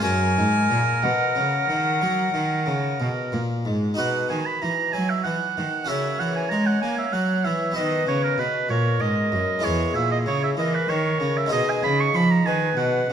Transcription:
0.00 0.34 F#2 medium
0.00 0.34 C#4 soft
0.00 3.93 F#4 soft
0.00 3.94 A#4 soft
0.00 3.46 A#4 medium
0.00 1.05 G#5 loud
0.04 0.40 F#2 medium
0.37 0.67 G#2 medium
0.37 0.70 G#2 medium
0.70 1.00 A#2 medium
0.70 0.79 A#2 medium
1.03 1.33 B2 medium
1.03 1.12 B2 medium
1.03 3.00 F#5 medium
1.35 1.65 C#3 medium
1.35 1.68 C#3 medium
1.69 2.04 D#3 medium
1.69 1.99 D#3 medium
2.01 2.31 F#3 medium
2.01 2.34 F#3 medium
2.34 2.64 D#3 medium
2.34 2.69 D#3 medium
2.66 2.96 C#3 medium
2.66 3.00 C#3 medium
3.00 3.30 B2 soft
3.00 3.08 B2 medium
3.32 3.63 A#2 medium
3.32 3.41 A#2 medium
3.65 3.95 G#2 medium
3.65 3.98 G#2 medium
3.94 5.82 D#4 soft
3.94 5.83 F#4 soft
3.94 5.84 B4 soft
3.98 4.27 B2 soft
3.98 4.29 B2 soft
3.98 4.28 F#5 medium
4.29 4.58 D#3 soft
4.29 4.39 D#3 medium
4.29 4.48 G#5 medium
4.46 4.64 B5 medium
4.62 4.91 E3 soft
4.62 4.71 E3 soft
4.62 4.94 A#5 medium
4.93 5.22 F#3 soft
4.93 5.25 F#3 soft
4.93 5.11 G#5 medium
5.10 5.23 E5 medium
5.24 5.54 E3 soft
5.24 5.34 E3 soft
5.24 5.89 F#5 medium
5.57 5.86 D#3 soft
5.57 5.66 D#3 soft
5.84 7.71 C#4 soft
5.84 7.71 F#4 soft
5.84 7.72 A#4 soft
5.84 6.21 E5 medium
5.89 6.17 C#3 soft
5.89 6.20 C#3 soft
5.89 7.73 C#5 medium
6.19 6.48 E3 soft
6.19 6.51 E3 soft
6.19 6.35 F#5 medium
6.36 6.51 G#5 medium
6.49 6.80 G#3 soft
6.49 6.82 G#3 medium
6.49 6.68 A#5 medium
6.66 6.81 F#5 medium
6.82 7.13 A#3 medium
6.82 7.11 A#3 soft
6.82 6.98 G#5 medium
6.98 7.14 E5 medium
7.13 7.42 F#3 soft
7.13 7.48 F#3 medium
7.13 7.46 F#5 medium
7.45 7.73 E3 soft
7.45 7.77 E3 soft
7.45 7.77 E5 medium
7.72 9.57 B3 soft
7.72 9.58 F#4 soft
7.72 8.07 D#5 medium
7.76 8.05 D#3 soft
7.76 8.07 D#3 medium
7.76 8.67 B4 medium
8.07 8.35 C#3 soft
8.07 8.38 C#3 medium
8.07 8.23 C#5 medium
8.23 8.41 A#4 medium
8.38 8.66 B2 soft
8.38 8.47 B2 soft
8.38 8.69 B4 medium
8.69 8.97 A#2 soft
8.69 9.00 A#2 medium
8.69 9.65 A#4 medium
8.69 9.02 C#5 medium
9.00 9.29 G#2 soft
9.00 9.32 G#2 soft
9.00 9.66 D#5 medium
9.32 9.60 F#2 soft
9.32 9.41 F#2 medium
9.59 9.92 G#3 soft
9.59 11.46 E4 soft
9.59 11.47 G#4 soft
9.63 9.91 E2 soft
9.63 9.95 E2 medium
9.63 10.57 G#4 medium
9.63 9.95 C#5 medium
9.95 10.23 A#2 medium
9.95 10.28 A#2 medium
9.95 10.10 E5 medium
10.11 10.18 D#5 medium
10.26 10.54 C#3 medium
10.26 10.58 C#3 medium
10.26 10.42 C#5 medium
10.44 10.50 E5 medium
10.57 10.85 E3 soft
10.57 10.89 E3 medium
10.57 11.54 A#4 medium
10.57 10.76 D#5 medium
10.75 10.91 B4 medium
10.88 11.17 D#3 medium
10.88 11.22 D#3 medium
10.88 11.39 C#5 medium
11.20 11.49 C#3 medium
11.20 11.52 C#3 medium
11.37 11.52 E5 medium
11.46 13.13 G#3 soft
11.46 13.13 D#4 soft
11.46 13.13 G#4 soft
11.51 11.80 B2 soft
11.51 11.60 B2 medium
11.51 12.19 G#4 medium
11.51 11.71 D#5 medium
11.70 11.83 G#5 medium
11.82 12.11 C#3 soft
11.82 12.14 C#3 medium
11.82 12.02 B5 medium
12.00 12.17 C#6 medium
12.14 12.43 F3 soft
12.14 12.45 F3 medium
12.14 12.32 B5 medium
12.31 12.48 A#5 medium
12.46 12.76 D#3 medium
12.46 12.75 D#3 soft
12.46 13.13 B4 medium
12.46 12.76 G#5 medium
12.77 13.08 B2 medium
12.77 13.06 B2 soft
12.77 13.13 F#5 medium
13.09 13.13 C#3 medium

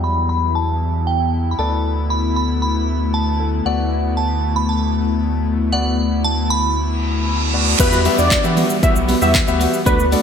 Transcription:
0.00 1.55 E2 medium
0.00 1.57 E3 medium
0.00 1.55 F#3 medium
0.00 1.55 G3 medium
0.00 7.76 B3 medium
0.00 5.69 E4 medium
0.00 1.55 E5 medium
0.00 0.28 B5 loud
0.29 0.41 B5 medium
0.55 1.09 A5 medium
1.07 1.43 G5 medium
1.51 1.59 B5 medium
1.58 3.62 D2 medium
1.58 7.76 D3 medium
1.58 7.76 A3 medium
1.58 3.36 B3 medium
1.58 3.36 A4 medium
1.58 3.37 D5 medium
1.58 2.12 A5 medium
2.10 2.35 B5 loud
2.36 2.61 B5 medium
2.62 3.15 B5 medium
3.14 3.50 A5 medium
3.39 3.64 B3 soft
3.39 3.66 A4 soft
3.39 3.66 B4 medium
3.65 7.75 D2 medium
3.65 5.68 B3 medium
3.65 5.69 F#4 medium
3.65 5.69 D5 medium
3.65 4.19 F#5 medium
4.17 4.53 A5 medium
4.56 4.69 B5 medium
4.69 5.43 A5 medium
5.72 7.50 B3 medium
5.72 7.77 E4 medium
5.72 7.50 F#4 medium
5.72 7.50 D5 medium
5.72 6.26 F#5 medium
6.24 6.51 A5 medium
6.50 7.50 B5 medium
6.76 reverse cymbal medium
7.53 7.78 B3 medium
7.53 7.78 F#4 medium
7.53 7.80 D5 medium
7.79 8.09 E2 loud
7.79 9.84 E3 medium
7.79 9.84 G3 medium
7.79 7.99 B3 medium
7.79 10.22 B3 medium
7.79 7.99 F#4 medium
7.79 8.00 G4 medium
7.79 7.99 B4 loud
7.79 8.00 E5 medium
7.79 10.22 F#5 loud
7.79 muted clean electric guitar stroke medium
7.79 kick loud
7.79 closed hi-hat medium
7.79 crash loud
7.79 downlifter medium
7.79 shaker medium
7.92 8.04 G3 medium
7.92 8.05 B3 medium
7.92 8.06 F#4 loud
7.92 shaker medium
8.05 8.19 G3 medium
8.05 8.35 B3 medium
8.05 8.18 B3 medium
8.05 8.36 F#4 medium
8.05 8.17 F#4 medium
8.05 8.36 G4 medium
8.05 8.36 E5 medium
8.05 open hi-hat medium
8.05 shaker medium
8.18 8.38 E2 medium
8.18 8.55 D5 medium
8.18 muted clean electric guitar stroke soft
8.18 shaker medium
8.31 kick loud
8.31 clap loud
8.31 closed hi-hat medium
8.31 shaker medium
8.43 8.64 E3 medium
8.43 8.74 B3 medium
8.43 8.74 F#4 medium
8.43 8.74 G4 medium
8.43 8.74 E5 medium
8.43 muted clean electric guitar stroke soft
8.43 shaker medium
8.57 8.74 G3 medium
8.57 8.70 B3 medium
8.57 8.69 F#4 loud
8.57 open hi-hat medium
8.57 shaker medium
8.70 muted clean electric guitar stroke soft
8.70 shaker medium
8.82 9.13 B3 medium
8.82 9.13 F#4 medium
8.82 9.13 G4 medium
8.82 9.13 E5 medium
8.82 8.93 E5 medium
8.82 muted clean electric guitar stroke soft
8.82 kick loud
8.82 closed hi-hat medium
8.82 shaker medium
8.96 9.15 B1 medium
8.96 muted clean electric guitar stroke soft
8.96 shaker medium
9.08 9.22 G3 medium
9.08 9.21 B3 medium
9.08 9.20 F#4 medium
9.08 open hi-hat medium
9.08 shaker soft
9.21 9.41 E2 loud
9.21 9.33 G3 medium
9.21 9.42 B3 medium
9.21 9.34 B3 medium
9.21 9.34 F#4 medium
9.21 9.42 F#4 medium
9.21 9.42 G4 medium
9.21 9.31 E5 medium
9.21 9.42 E5 medium
9.21 shaker medium
9.35 kick loud
9.35 clap loud
9.35 closed hi-hat medium
9.35 shaker medium
9.47 9.67 D2 medium
9.47 9.78 B3 medium
9.47 9.78 F#4 medium
9.47 9.78 G4 medium
9.47 9.78 E5 loud
9.47 muted clean electric guitar stroke medium
9.47 shaker medium
9.60 9.77 G3 medium
9.60 9.73 B3 loud
9.60 9.72 F#4 loud
9.60 open hi-hat medium
9.60 shaker medium
9.73 muted clean electric guitar stroke medium
9.73 shaker medium
9.85 10.16 D2 loud
9.85 10.22 D3 medium
9.85 10.03 A3 medium
9.85 10.22 A3 medium
9.85 10.06 B3 medium
9.85 9.99 D4 loud
9.85 10.06 F#4 medium
9.85 9.97 F#4 loud
9.85 10.07 A4 medium
9.85 10.05 B4 loud
9.85 10.07 D5 medium
9.85 kick loud
9.85 closed hi-hat medium
9.85 shaker medium
9.99 muted clean electric guitar stroke medium
9.99 shaker medium
10.11 10.22 A3 medium
10.11 10.22 B3 medium
10.11 10.22 D4 medium
10.11 10.22 F#4 medium
10.11 10.22 A4 medium
10.11 10.22 D5 medium
10.11 open hi-hat medium
10.11 shaker medium

